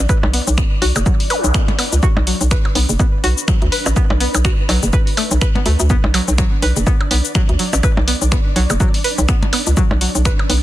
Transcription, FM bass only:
0.23 0.41 B1 loud
0.47 0.65 B1 loud
0.82 0.92 B1 medium
0.96 1.04 F#1 loud
1.44 1.52 B1 loud
1.93 2.00 C#2 medium
2.17 2.34 B1 loud
2.41 2.59 B1 loud
2.75 2.86 B1 medium
2.89 2.97 F#1 loud
3.24 3.34 B1 medium
3.62 3.70 D2 medium
3.86 3.94 A1 medium
4.10 4.28 B1 loud
4.34 4.52 B1 medium
4.69 4.80 B1 medium
4.83 4.91 F#1 loud
5.31 5.39 B1 loud
5.66 5.76 D2 loud
5.80 5.97 D2 loud
6.04 6.21 B1 loud
6.28 6.46 B1 loud
6.63 6.73 B1 loud
6.77 6.84 F#1 loud
7.11 7.22 B1 medium
7.49 7.57 D2 medium
7.73 7.81 A1 medium
7.97 8.15 B1 loud
8.22 8.39 B1 medium
8.56 8.67 B1 medium
8.70 8.78 F#1 loud
9.18 9.26 B1 loud
9.67 9.75 C#2 medium
9.91 10.09 B1 loud
10.15 10.33 B1 medium
10.50 10.60 B1 loud

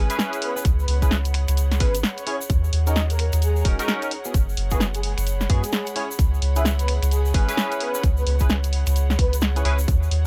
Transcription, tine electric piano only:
0.10 0.53 C#4 loud
0.10 0.53 E4 medium
0.10 0.53 G#4 medium
0.10 0.53 B4 loud
0.56 0.64 C#4 medium
0.56 0.64 E4 medium
0.56 0.64 G#4 medium
0.56 0.64 B4 medium
1.02 1.16 C#4 loud
1.02 1.16 E4 medium
1.02 1.16 G#4 medium
1.02 1.16 B4 loud
1.80 1.92 C#4 loud
1.80 1.92 E4 medium
1.80 1.92 G#4 medium
1.80 1.92 B4 loud
2.27 2.38 C#4 medium
2.27 2.38 E4 medium
2.27 2.38 G#4 medium
2.27 2.38 C#5 loud
2.87 3.01 C#4 medium
2.87 3.01 D#4 medium
2.87 3.01 F#4 medium
2.87 3.01 A#4 medium
3.65 3.77 C#4 loud
3.65 3.77 D#4 medium
3.65 3.77 F#4 medium
3.65 3.77 A#4 loud
3.79 4.10 C#4 loud
3.79 4.10 D#4 medium
3.79 4.10 F#4 medium
3.79 4.10 A#4 loud
4.25 4.33 B3 medium
4.25 4.33 E4 medium
4.25 4.33 F#4 medium
4.25 4.33 G#4 medium
4.71 4.85 B3 loud
4.71 4.85 E4 medium
4.71 4.85 F#4 medium
4.71 4.85 G#4 loud
5.50 5.62 B3 loud
5.50 5.62 E4 medium
5.50 5.62 F#4 medium
5.50 5.62 G#4 loud
5.96 6.08 C#4 medium
5.96 6.08 E4 medium
5.96 6.08 G#4 medium
5.96 6.08 C#5 loud
6.56 6.70 C#4 medium
6.56 6.70 E4 medium
6.56 6.70 G#4 medium
6.56 6.70 B4 loud
7.34 7.46 C#4 loud
7.34 7.46 E4 medium
7.34 7.46 G#4 loud
7.34 7.46 B4 loud
7.48 7.91 C#4 loud
7.48 7.91 E4 medium
7.48 7.91 G#4 medium
7.48 7.91 B4 loud
7.95 8.02 C#4 medium
7.95 8.02 E4 medium
7.95 8.02 G#4 medium
7.95 8.02 B4 medium
8.41 8.54 C#4 loud
8.41 8.54 E4 medium
8.41 8.54 G#4 medium
8.41 8.54 B4 loud
9.56 9.64 C#4 medium
9.56 9.64 E4 medium
9.56 9.64 G#4 medium
9.56 9.64 B4 medium
9.65 9.77 C#4 medium
9.65 9.77 E4 medium
9.65 9.77 G#4 medium
9.65 9.77 B4 loud

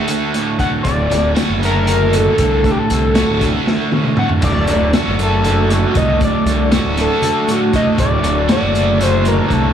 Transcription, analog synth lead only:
0.60 0.71 F#5 loud
0.83 1.32 D5 medium
1.65 2.17 A#4 loud
2.15 2.39 A4 medium
2.40 2.63 A4 medium
2.65 2.73 A4 medium
2.71 2.80 G4 medium
2.79 3.41 A4 medium
4.19 4.30 F#5 medium
4.44 4.91 D5 medium
5.23 5.74 A4 medium
5.73 5.98 F#4 medium
5.97 6.22 D#5 loud
6.24 6.70 D5 medium
7.01 7.53 A4 loud
7.51 7.75 F#4 medium
7.76 7.87 D#5 medium
8.00 8.46 D5 medium
8.52 8.98 D5 medium
9.03 9.29 C5 loud
9.28 9.54 A#4 medium
9.53 9.73 A4 medium

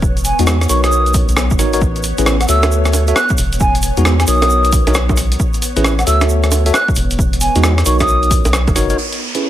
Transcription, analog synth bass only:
0.00 0.34 E1 loud
0.39 0.67 E2 medium
0.70 1.23 B1 medium
1.29 1.51 B1 medium
1.51 1.61 F#1 medium
1.59 2.13 A1 medium
2.18 2.46 A1 medium
2.49 3.13 D2 medium
3.38 3.92 E1 loud
3.97 4.25 E2 loud
4.28 4.81 B1 medium
4.87 5.37 B1 loud
5.77 6.04 A1 medium
6.07 6.71 D2 medium
6.96 7.50 E1 loud
7.56 7.83 E2 loud
7.86 8.40 B1 medium
8.45 8.67 B1 loud
8.68 8.74 F#1 medium
8.75 8.94 F#1 medium

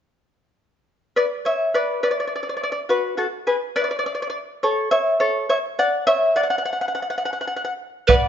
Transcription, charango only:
1.16 1.24 B4 medium
1.16 1.25 D5 medium
1.45 1.72 C#5 soft
1.45 1.73 E5 medium
1.74 2.01 B4 medium
1.74 2.02 D5 medium
2.03 2.10 B4 medium
2.03 2.10 D5 medium
2.11 2.18 D5 soft
2.20 2.26 D5 soft
2.28 2.34 D5 soft
2.36 2.42 D5 soft
2.43 2.48 D5 soft
2.49 2.56 D5 soft
2.57 2.62 D5 soft
2.64 2.71 D5 medium
2.72 2.79 D5 soft
2.89 3.16 F#4 medium
2.89 3.18 B4 medium
3.17 3.25 F#4 soft
3.17 3.26 A4 medium
3.47 3.55 G#4 medium
3.47 3.55 B4 medium
3.76 3.83 B4 medium
3.76 3.83 D5 medium
3.84 3.90 D5 soft
3.91 3.98 D5 medium
3.99 4.05 D5 soft
4.06 4.13 D5 medium
4.15 4.21 D5 soft
4.22 4.29 D5 medium
4.30 4.37 D5 medium
4.63 4.90 A4 medium
4.63 4.91 C#5 medium
4.91 5.19 C#5 medium
4.91 5.18 E5 medium
5.20 5.48 A4 medium
5.20 5.48 C#5 medium
5.49 5.57 C#5 medium
5.49 5.57 E5 medium
5.79 6.05 D5 medium
5.79 6.06 F#5 medium
6.07 6.34 C#5 medium
6.07 6.34 E5 medium
6.36 6.43 D5 medium
6.36 6.42 F#5 medium
6.43 6.49 F#5 soft
6.50 6.57 F#5 medium
6.58 6.64 F#5 soft
6.65 6.71 F#5 medium
6.73 6.80 F#5 soft
6.81 6.87 F#5 medium
6.88 6.94 F#5 soft
6.95 7.01 F#5 medium
7.02 7.09 F#5 soft
7.10 7.17 F#5 medium
7.18 7.24 F#5 soft
7.25 7.32 F#5 medium
7.33 7.40 F#5 soft
7.41 7.46 F#5 medium
7.47 7.55 F#5 soft
7.56 7.63 F#5 soft
7.65 7.72 F#5 soft
8.09 8.28 B4 medium
8.09 8.28 D5 medium
8.09 8.28 F#5 medium

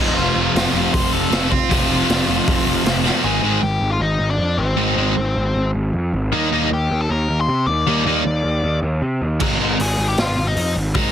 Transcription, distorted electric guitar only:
0.00 1.29 F2 loud
0.00 1.31 C3 medium
0.00 1.32 F3 loud
1.31 1.49 F2 medium
1.31 1.50 C3 medium
1.31 1.51 F3 medium
1.69 3.03 F2 medium
1.69 3.04 C3 loud
1.69 3.03 F3 loud
3.04 3.23 F2 medium
3.04 3.23 C3 medium
3.04 3.23 F3 medium
3.23 3.39 G#2 medium
3.23 3.40 D#3 medium
3.23 3.40 G#3 medium
3.43 3.59 G#2 medium
3.43 3.59 D#3 medium
3.43 3.59 G#3 medium
4.77 4.93 G#2 medium
4.77 4.93 D#3 medium
4.77 4.94 G#3 loud
4.96 5.12 G#2 medium
4.96 5.13 D#3 medium
4.96 5.13 G#3 medium
6.32 6.48 D#3 medium
6.32 6.48 A#3 loud
6.32 6.49 D#4 loud
6.52 6.67 D#3 medium
6.52 6.68 A#3 medium
6.52 6.68 D#4 loud
7.87 8.02 D#3 medium
7.87 8.03 A#3 medium
7.87 8.03 D#4 medium
8.06 8.21 D#3 medium
8.06 8.22 A#3 medium
8.06 8.22 D#4 medium
9.41 9.56 G#2 loud
9.41 9.57 D#3 medium
9.41 9.57 G#3 loud
9.61 9.76 G#2 medium
9.61 9.76 D#3 medium
9.61 9.77 G#3 medium
10.95 11.10 G#2 medium
10.95 11.11 D#3 medium
10.95 11.11 G#3 medium

